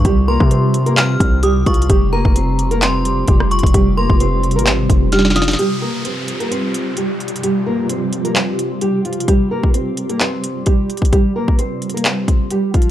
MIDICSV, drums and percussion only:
0, 0, Header, 1, 2, 480
1, 0, Start_track
1, 0, Tempo, 461538
1, 52, Time_signature, 4, 2, 24, 8
1, 13424, End_track
2, 0, Start_track
2, 0, Title_t, "Drums"
2, 50, Note_on_c, 9, 42, 97
2, 51, Note_on_c, 9, 36, 120
2, 154, Note_off_c, 9, 42, 0
2, 155, Note_off_c, 9, 36, 0
2, 419, Note_on_c, 9, 36, 97
2, 523, Note_off_c, 9, 36, 0
2, 530, Note_on_c, 9, 42, 77
2, 634, Note_off_c, 9, 42, 0
2, 771, Note_on_c, 9, 42, 67
2, 875, Note_off_c, 9, 42, 0
2, 898, Note_on_c, 9, 42, 43
2, 1002, Note_off_c, 9, 42, 0
2, 1011, Note_on_c, 9, 39, 120
2, 1016, Note_on_c, 9, 42, 82
2, 1115, Note_off_c, 9, 39, 0
2, 1120, Note_off_c, 9, 42, 0
2, 1251, Note_on_c, 9, 36, 105
2, 1253, Note_on_c, 9, 42, 90
2, 1355, Note_off_c, 9, 36, 0
2, 1357, Note_off_c, 9, 42, 0
2, 1486, Note_on_c, 9, 42, 74
2, 1590, Note_off_c, 9, 42, 0
2, 1730, Note_on_c, 9, 46, 71
2, 1731, Note_on_c, 9, 36, 108
2, 1731, Note_on_c, 9, 42, 41
2, 1811, Note_off_c, 9, 42, 0
2, 1811, Note_on_c, 9, 42, 55
2, 1834, Note_off_c, 9, 46, 0
2, 1835, Note_off_c, 9, 36, 0
2, 1891, Note_off_c, 9, 42, 0
2, 1891, Note_on_c, 9, 42, 68
2, 1972, Note_off_c, 9, 42, 0
2, 1972, Note_on_c, 9, 36, 119
2, 1972, Note_on_c, 9, 42, 100
2, 2076, Note_off_c, 9, 36, 0
2, 2076, Note_off_c, 9, 42, 0
2, 2340, Note_on_c, 9, 36, 94
2, 2444, Note_off_c, 9, 36, 0
2, 2452, Note_on_c, 9, 42, 79
2, 2556, Note_off_c, 9, 42, 0
2, 2692, Note_on_c, 9, 42, 66
2, 2796, Note_off_c, 9, 42, 0
2, 2820, Note_on_c, 9, 42, 43
2, 2924, Note_off_c, 9, 42, 0
2, 2933, Note_on_c, 9, 39, 125
2, 2938, Note_on_c, 9, 42, 85
2, 3037, Note_off_c, 9, 39, 0
2, 3042, Note_off_c, 9, 42, 0
2, 3175, Note_on_c, 9, 42, 89
2, 3279, Note_off_c, 9, 42, 0
2, 3407, Note_on_c, 9, 42, 74
2, 3413, Note_on_c, 9, 36, 103
2, 3511, Note_off_c, 9, 42, 0
2, 3517, Note_off_c, 9, 36, 0
2, 3539, Note_on_c, 9, 37, 101
2, 3643, Note_off_c, 9, 37, 0
2, 3653, Note_on_c, 9, 42, 41
2, 3732, Note_off_c, 9, 42, 0
2, 3732, Note_on_c, 9, 42, 53
2, 3779, Note_on_c, 9, 36, 90
2, 3812, Note_off_c, 9, 42, 0
2, 3812, Note_on_c, 9, 42, 70
2, 3883, Note_off_c, 9, 36, 0
2, 3892, Note_off_c, 9, 42, 0
2, 3892, Note_on_c, 9, 36, 117
2, 3892, Note_on_c, 9, 42, 102
2, 3996, Note_off_c, 9, 36, 0
2, 3996, Note_off_c, 9, 42, 0
2, 4260, Note_on_c, 9, 36, 96
2, 4364, Note_off_c, 9, 36, 0
2, 4371, Note_on_c, 9, 42, 80
2, 4475, Note_off_c, 9, 42, 0
2, 4612, Note_on_c, 9, 42, 40
2, 4692, Note_off_c, 9, 42, 0
2, 4692, Note_on_c, 9, 42, 54
2, 4772, Note_off_c, 9, 42, 0
2, 4772, Note_on_c, 9, 42, 74
2, 4852, Note_on_c, 9, 39, 125
2, 4856, Note_off_c, 9, 42, 0
2, 4856, Note_on_c, 9, 42, 78
2, 4956, Note_off_c, 9, 39, 0
2, 4960, Note_off_c, 9, 42, 0
2, 5091, Note_on_c, 9, 36, 102
2, 5093, Note_on_c, 9, 42, 93
2, 5195, Note_off_c, 9, 36, 0
2, 5197, Note_off_c, 9, 42, 0
2, 5326, Note_on_c, 9, 42, 72
2, 5331, Note_on_c, 9, 38, 62
2, 5395, Note_off_c, 9, 38, 0
2, 5395, Note_on_c, 9, 38, 58
2, 5430, Note_off_c, 9, 42, 0
2, 5459, Note_off_c, 9, 38, 0
2, 5459, Note_on_c, 9, 38, 81
2, 5515, Note_off_c, 9, 38, 0
2, 5515, Note_on_c, 9, 38, 75
2, 5571, Note_on_c, 9, 46, 68
2, 5572, Note_off_c, 9, 38, 0
2, 5572, Note_on_c, 9, 38, 94
2, 5572, Note_on_c, 9, 42, 55
2, 5635, Note_off_c, 9, 38, 0
2, 5635, Note_on_c, 9, 38, 87
2, 5652, Note_off_c, 9, 42, 0
2, 5652, Note_on_c, 9, 42, 53
2, 5675, Note_off_c, 9, 46, 0
2, 5699, Note_off_c, 9, 38, 0
2, 5699, Note_on_c, 9, 38, 114
2, 5731, Note_off_c, 9, 42, 0
2, 5731, Note_on_c, 9, 42, 58
2, 5755, Note_off_c, 9, 38, 0
2, 5755, Note_on_c, 9, 38, 102
2, 5812, Note_off_c, 9, 42, 0
2, 5812, Note_on_c, 9, 42, 91
2, 5859, Note_off_c, 9, 38, 0
2, 5916, Note_off_c, 9, 42, 0
2, 6291, Note_on_c, 9, 42, 75
2, 6395, Note_off_c, 9, 42, 0
2, 6532, Note_on_c, 9, 42, 64
2, 6636, Note_off_c, 9, 42, 0
2, 6659, Note_on_c, 9, 42, 41
2, 6763, Note_off_c, 9, 42, 0
2, 6777, Note_on_c, 9, 42, 78
2, 6881, Note_off_c, 9, 42, 0
2, 7014, Note_on_c, 9, 42, 88
2, 7118, Note_off_c, 9, 42, 0
2, 7246, Note_on_c, 9, 42, 69
2, 7350, Note_off_c, 9, 42, 0
2, 7492, Note_on_c, 9, 42, 38
2, 7572, Note_off_c, 9, 42, 0
2, 7572, Note_on_c, 9, 42, 51
2, 7652, Note_off_c, 9, 42, 0
2, 7652, Note_on_c, 9, 42, 65
2, 7732, Note_off_c, 9, 42, 0
2, 7732, Note_on_c, 9, 42, 91
2, 7836, Note_off_c, 9, 42, 0
2, 8211, Note_on_c, 9, 42, 75
2, 8315, Note_off_c, 9, 42, 0
2, 8451, Note_on_c, 9, 42, 63
2, 8555, Note_off_c, 9, 42, 0
2, 8578, Note_on_c, 9, 42, 41
2, 8682, Note_off_c, 9, 42, 0
2, 8691, Note_on_c, 9, 39, 116
2, 8696, Note_on_c, 9, 42, 76
2, 8795, Note_off_c, 9, 39, 0
2, 8800, Note_off_c, 9, 42, 0
2, 8933, Note_on_c, 9, 42, 85
2, 9037, Note_off_c, 9, 42, 0
2, 9166, Note_on_c, 9, 42, 68
2, 9270, Note_off_c, 9, 42, 0
2, 9412, Note_on_c, 9, 42, 39
2, 9492, Note_off_c, 9, 42, 0
2, 9492, Note_on_c, 9, 42, 52
2, 9572, Note_off_c, 9, 42, 0
2, 9572, Note_on_c, 9, 42, 66
2, 9652, Note_off_c, 9, 42, 0
2, 9652, Note_on_c, 9, 36, 109
2, 9652, Note_on_c, 9, 42, 93
2, 9756, Note_off_c, 9, 36, 0
2, 9756, Note_off_c, 9, 42, 0
2, 10020, Note_on_c, 9, 36, 88
2, 10124, Note_off_c, 9, 36, 0
2, 10131, Note_on_c, 9, 42, 75
2, 10235, Note_off_c, 9, 42, 0
2, 10372, Note_on_c, 9, 42, 64
2, 10476, Note_off_c, 9, 42, 0
2, 10499, Note_on_c, 9, 42, 41
2, 10603, Note_off_c, 9, 42, 0
2, 10612, Note_on_c, 9, 39, 116
2, 10617, Note_on_c, 9, 42, 75
2, 10716, Note_off_c, 9, 39, 0
2, 10721, Note_off_c, 9, 42, 0
2, 10854, Note_on_c, 9, 42, 85
2, 10958, Note_off_c, 9, 42, 0
2, 11086, Note_on_c, 9, 42, 72
2, 11093, Note_on_c, 9, 36, 95
2, 11190, Note_off_c, 9, 42, 0
2, 11197, Note_off_c, 9, 36, 0
2, 11332, Note_on_c, 9, 42, 37
2, 11412, Note_off_c, 9, 42, 0
2, 11412, Note_on_c, 9, 42, 51
2, 11459, Note_on_c, 9, 36, 90
2, 11492, Note_off_c, 9, 42, 0
2, 11492, Note_on_c, 9, 42, 67
2, 11563, Note_off_c, 9, 36, 0
2, 11572, Note_off_c, 9, 42, 0
2, 11572, Note_on_c, 9, 36, 112
2, 11572, Note_on_c, 9, 42, 96
2, 11676, Note_off_c, 9, 36, 0
2, 11676, Note_off_c, 9, 42, 0
2, 11940, Note_on_c, 9, 36, 90
2, 12044, Note_off_c, 9, 36, 0
2, 12051, Note_on_c, 9, 42, 78
2, 12155, Note_off_c, 9, 42, 0
2, 12291, Note_on_c, 9, 42, 38
2, 12371, Note_off_c, 9, 42, 0
2, 12371, Note_on_c, 9, 42, 50
2, 12451, Note_off_c, 9, 42, 0
2, 12451, Note_on_c, 9, 42, 71
2, 12531, Note_on_c, 9, 39, 120
2, 12536, Note_off_c, 9, 42, 0
2, 12536, Note_on_c, 9, 42, 79
2, 12635, Note_off_c, 9, 39, 0
2, 12640, Note_off_c, 9, 42, 0
2, 12771, Note_on_c, 9, 36, 97
2, 12774, Note_on_c, 9, 42, 85
2, 12875, Note_off_c, 9, 36, 0
2, 12878, Note_off_c, 9, 42, 0
2, 13006, Note_on_c, 9, 42, 70
2, 13110, Note_off_c, 9, 42, 0
2, 13251, Note_on_c, 9, 36, 104
2, 13251, Note_on_c, 9, 42, 51
2, 13331, Note_off_c, 9, 42, 0
2, 13331, Note_on_c, 9, 42, 51
2, 13355, Note_off_c, 9, 36, 0
2, 13424, Note_off_c, 9, 42, 0
2, 13424, End_track
0, 0, End_of_file